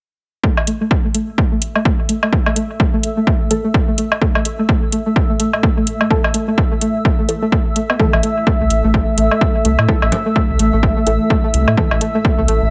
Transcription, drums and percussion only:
0.44 kick loud
0.57 low woodblock medium
0.67 closed hi-hat medium
0.91 kick loud
1.15 closed hi-hat medium
1.38 kick loud
1.62 closed hi-hat medium
1.76 low woodblock medium
1.85 kick loud
2.09 closed hi-hat medium
2.23 low woodblock medium
2.33 kick loud
2.46 low woodblock medium
2.56 closed hi-hat medium
2.80 kick loud
3.03 closed hi-hat medium
3.27 kick loud
3.51 closed hi-hat medium
3.74 kick loud
3.98 closed hi-hat medium
4.12 low woodblock medium
4.22 kick loud
4.35 low woodblock medium
4.45 closed hi-hat medium
4.69 kick loud
4.92 closed hi-hat medium
5.16 kick loud
5.40 closed hi-hat loud
5.53 low woodblock medium
5.63 kick loud
5.87 closed hi-hat medium
6.01 low woodblock medium
6.11 kick loud
6.24 low woodblock medium
6.34 closed hi-hat medium
6.58 kick loud
6.81 closed hi-hat medium
7.05 kick loud
7.29 closed hi-hat loud
7.52 kick loud
7.76 closed hi-hat medium
7.90 low woodblock medium
8.00 kick loud
8.13 low woodblock medium
8.23 closed hi-hat medium
8.47 kick loud
8.70 closed hi-hat medium
8.94 kick loud
9.18 closed hi-hat medium
9.31 low woodblock medium
9.41 kick loud
9.65 closed hi-hat medium
9.79 low woodblock medium
9.89 kick loud
10.02 low woodblock medium
10.12 closed hi-hat medium
10.12 low conga medium
10.36 kick loud
10.59 closed hi-hat medium
10.83 kick loud
11.07 closed hi-hat medium
11.30 kick loud
11.54 closed hi-hat medium
11.68 low woodblock medium
11.77 kick loud
11.91 low woodblock medium
12.01 closed hi-hat medium
12.25 kick loud
12.48 closed hi-hat medium

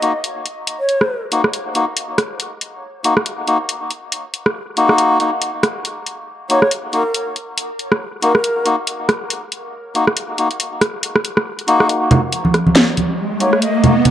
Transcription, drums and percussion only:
0.02 closed hi-hat soft
0.24 closed hi-hat medium
0.46 closed hi-hat soft
0.67 closed hi-hat medium
0.89 closed hi-hat medium
1.01 cross-stick soft
1.32 closed hi-hat medium
1.44 cross-stick soft
1.53 closed hi-hat medium
1.75 closed hi-hat soft
1.97 closed hi-hat medium
2.18 cross-stick medium
2.18 closed hi-hat soft
2.40 closed hi-hat medium
2.61 closed hi-hat medium
3.04 closed hi-hat medium
3.17 cross-stick soft
3.26 closed hi-hat medium
3.47 closed hi-hat soft
3.69 closed hi-hat medium
3.91 closed hi-hat soft
4.12 closed hi-hat medium
4.34 closed hi-hat medium
4.46 cross-stick soft
4.77 closed hi-hat medium
4.89 cross-stick soft
4.98 closed hi-hat medium
5.20 closed hi-hat soft
5.42 closed hi-hat medium
5.63 cross-stick medium
5.63 closed hi-hat soft
5.85 closed hi-hat medium
6.06 closed hi-hat soft
6.50 closed hi-hat medium
6.62 cross-stick soft
6.71 closed hi-hat medium
6.93 closed hi-hat soft
7.14 closed hi-hat medium
7.36 closed hi-hat soft
7.58 closed hi-hat medium
7.79 closed hi-hat soft
7.92 cross-stick medium
8.22 closed hi-hat medium
8.35 cross-stick medium
8.44 closed hi-hat medium
8.66 closed hi-hat soft
8.87 closed hi-hat medium
9.09 cross-stick medium
9.09 closed hi-hat soft
9.30 closed hi-hat medium
9.52 closed hi-hat medium
9.95 closed hi-hat medium
10.07 cross-stick medium
10.17 closed hi-hat medium
10.38 closed hi-hat medium
10.51 closed hi-hat soft
10.60 closed hi-hat medium
10.81 cross-stick medium
10.81 closed hi-hat soft
11.03 closed hi-hat medium
11.16 cross-stick medium
11.25 closed hi-hat medium
11.37 cross-stick medium
11.59 closed hi-hat soft
11.68 closed hi-hat medium
11.80 cross-stick medium
11.89 closed hi-hat medium
12.11 closed hi-hat medium
12.11 low conga loud
12.32 closed hi-hat medium
12.45 high conga medium
12.54 cross-stick medium
12.54 closed hi-hat medium
12.67 high conga medium
12.76 snare loud
12.76 closed hi-hat medium
12.97 closed hi-hat medium
12.97 high conga medium
13.40 closed hi-hat medium
13.53 cross-stick medium
13.62 closed hi-hat medium
13.84 closed hi-hat medium
13.84 low conga medium
14.05 closed hi-hat medium
14.05 low conga medium

